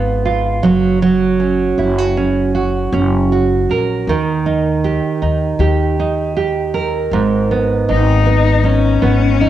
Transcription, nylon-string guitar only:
0.00 0.71 G#2 medium
0.00 0.73 B3 medium
0.00 0.24 F4 medium
0.25 0.72 F4 medium
0.63 1.01 F#3 medium
1.02 4.07 F#3 medium
1.40 2.16 C#4 soft
1.78 1.98 E4 medium
1.98 2.53 F#4 soft
2.17 2.92 C#4 soft
2.55 3.31 F#4 medium
2.93 4.15 C#4 medium
3.32 4.16 F#4 medium
3.71 6.74 A#4 medium
4.09 7.59 D#3 medium
4.46 5.22 D#4 soft
4.84 5.59 G4 soft
5.22 5.99 D#4 soft
5.60 6.35 G4 medium
5.99 7.51 D#4 medium
6.37 7.20 G4 medium
6.74 7.20 A#4 medium
7.13 9.49 G#2 medium
7.51 8.26 B3 medium
7.89 8.63 D#4 medium
8.26 9.01 B3 medium
8.64 9.40 D#4 medium
9.02 9.49 B3 medium
9.41 9.49 D#4 soft

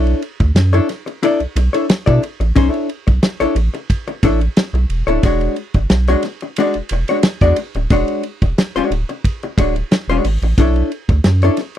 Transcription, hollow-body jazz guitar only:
0.00 0.20 D4 medium
0.00 0.20 E4 loud
0.00 0.20 A4 medium
0.00 0.21 C#5 medium
0.40 muted hollow-body jazz guitar stroke soft
0.56 muted hollow-body jazz guitar stroke soft
0.73 0.88 D4 medium
0.73 0.88 E4 medium
0.73 0.88 A4 medium
0.73 0.88 C#5 medium
0.89 muted hollow-body jazz guitar stroke soft
1.06 muted hollow-body jazz guitar stroke soft
1.23 1.39 D4 medium
1.23 1.39 E4 loud
1.23 1.39 A4 loud
1.23 1.40 D5 loud
1.56 muted hollow-body jazz guitar stroke soft
1.73 1.86 D4 medium
1.73 1.86 E4 medium
1.73 1.85 A4 medium
1.73 1.85 C#5 medium
1.89 muted hollow-body jazz guitar stroke soft
2.06 2.21 D4 medium
2.06 2.22 E4 medium
2.06 2.21 A4 loud
2.06 2.21 D5 medium
2.22 muted hollow-body jazz guitar stroke medium
2.40 muted hollow-body jazz guitar stroke medium
2.56 2.69 C#4 loud
2.56 2.69 D#4 loud
2.56 2.70 G#4 loud
2.56 2.71 C5 loud
2.69 2.87 D4 loud
2.69 2.87 E4 loud
2.69 2.87 A4 loud
2.69 2.88 C#5 loud
3.07 muted hollow-body jazz guitar stroke soft
3.23 muted hollow-body jazz guitar stroke soft
3.40 3.55 D4 medium
3.40 3.56 E4 medium
3.40 3.55 A4 loud
3.40 3.55 C#5 loud
3.56 muted hollow-body jazz guitar stroke soft
3.74 muted hollow-body jazz guitar stroke soft
4.08 muted hollow-body jazz guitar stroke medium
4.24 4.40 D4 medium
4.24 4.40 E4 medium
4.24 4.40 A4 medium
4.24 4.39 C#5 medium
4.40 muted hollow-body jazz guitar stroke soft
4.57 muted hollow-body jazz guitar stroke soft
4.74 muted hollow-body jazz guitar stroke soft
5.07 5.23 D4 medium
5.07 5.22 E4 medium
5.07 5.22 A4 medium
5.07 5.22 C#5 medium
5.24 5.54 G#3 medium
5.24 5.55 D4 loud
5.24 5.55 F#4 loud
5.24 5.55 C#5 loud
5.75 muted hollow-body jazz guitar stroke medium
5.91 muted hollow-body jazz guitar stroke soft
6.08 6.23 G#3 medium
6.08 6.23 D4 medium
6.08 6.23 F#4 medium
6.08 6.22 C#5 loud
6.24 muted hollow-body jazz guitar stroke soft
6.42 muted hollow-body jazz guitar stroke soft
6.58 6.74 G#3 medium
6.58 6.74 D4 medium
6.58 6.74 F#4 loud
6.58 6.75 D5 loud
6.92 muted hollow-body jazz guitar stroke soft
7.09 7.21 G#3 medium
7.09 7.20 D4 medium
7.09 7.20 F#4 medium
7.09 7.20 C#5 medium
7.25 muted hollow-body jazz guitar stroke soft
7.42 7.57 G#3 medium
7.42 7.57 D4 medium
7.42 7.56 F#4 loud
7.42 7.56 D5 medium
7.58 muted hollow-body jazz guitar stroke soft
7.76 muted hollow-body jazz guitar stroke soft
7.91 8.21 G#3 medium
7.91 8.22 D4 loud
7.91 8.22 F#4 loud
7.91 8.22 C#5 loud
8.42 muted hollow-body jazz guitar stroke medium
8.58 muted hollow-body jazz guitar stroke soft
8.76 8.91 G#3 medium
8.76 8.92 D4 medium
8.76 8.92 F#4 loud
8.76 8.92 C#5 medium
8.92 muted hollow-body jazz guitar stroke soft
9.09 muted hollow-body jazz guitar stroke medium
9.43 muted hollow-body jazz guitar stroke soft
9.58 9.74 G#3 medium
9.58 9.74 D4 medium
9.58 9.74 F#4 medium
9.58 9.75 C#5 medium
9.76 muted hollow-body jazz guitar stroke soft
9.91 muted hollow-body jazz guitar stroke soft
10.10 10.24 G#3 medium
10.10 10.25 D4 medium
10.10 10.26 F#4 medium
10.10 10.26 C#5 loud
10.26 muted hollow-body jazz guitar stroke soft
10.43 muted hollow-body jazz guitar stroke soft
10.58 10.89 D4 medium
10.58 10.89 E4 loud
10.58 10.89 A4 loud
10.58 10.90 C#5 loud
11.10 muted hollow-body jazz guitar stroke soft
11.26 muted hollow-body jazz guitar stroke soft
11.43 11.58 D4 medium
11.43 11.58 E4 medium
11.43 11.57 A4 medium
11.43 11.57 C#5 medium
11.60 muted hollow-body jazz guitar stroke soft

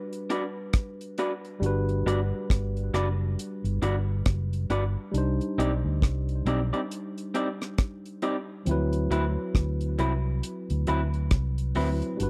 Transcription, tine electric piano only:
0.00 1.57 G3 medium
0.00 1.58 D4 medium
0.00 1.59 F#4 medium
0.00 1.60 B4 medium
1.60 5.09 G3 medium
1.60 5.10 D4 medium
1.64 5.11 F#4 medium
1.64 5.12 B4 medium
5.12 8.61 G3 medium
5.12 8.63 D4 medium
5.16 8.63 D#4 medium
5.16 8.65 C5 medium
8.65 8.74 F3 medium
8.65 11.71 C4 medium
8.65 11.73 E4 medium
8.71 11.74 F#3 medium
8.71 11.74 B4 medium
11.75 12.19 F#3 medium
11.75 12.20 C4 medium
11.75 12.20 E4 medium
11.75 12.21 B4 medium
12.17 12.30 G3 medium
12.17 12.30 D4 medium
12.21 12.30 F#4 medium
12.21 12.30 B4 medium

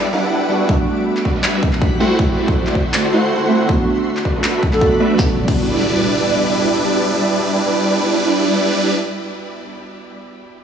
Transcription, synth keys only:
0.00 0.47 G3 medium
0.00 0.48 B3 medium
0.00 0.48 D4 medium
0.00 0.49 F#4 loud
0.49 0.66 G3 medium
0.49 0.67 B3 medium
0.49 0.67 D4 medium
0.49 0.67 F#4 medium
0.67 1.97 A3 medium
0.67 1.98 B3 medium
0.67 1.98 D4 medium
0.67 1.99 F#4 loud
1.99 2.16 A3 medium
1.99 2.17 C4 medium
1.99 2.17 E4 medium
1.99 2.17 F#4 loud
2.17 3.47 A3 medium
2.17 3.48 C4 medium
2.17 3.48 E4 medium
2.21 3.49 F#4 loud
3.49 3.65 A3 medium
3.49 3.67 C4 medium
3.49 3.67 E4 medium
3.49 3.67 F#4 medium
3.67 4.70 A3 medium
3.67 4.71 B3 medium
3.67 4.71 D4 medium
3.71 4.72 F#4 loud
4.72 4.79 A3 medium
4.72 4.79 B3 medium
4.72 4.80 D4 medium
4.72 4.80 A4 medium
4.80 5.16 A3 medium
4.80 5.17 B3 medium
4.80 5.17 D4 medium
4.80 5.17 F#4 medium
5.16 5.28 G3 medium
5.16 5.29 B3 medium
5.20 5.30 D4 medium
5.20 5.32 F#4 medium
5.45 9.63 G3 medium
5.45 9.64 B3 medium
5.45 9.65 D4 medium
5.51 9.66 F#4 medium

